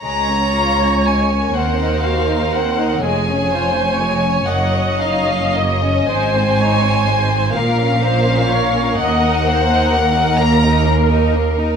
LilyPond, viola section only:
\new Staff \with { instrumentName = "Viola section" } { \time 6/8 \key des \major \tempo 4. = 41 des''4. bes'4. | aes'8 c''8 des''8 ees''4. | c''8 des''8 c''8 bes'8 c''8 des''8 | ees''8 c''8 bes'2 | }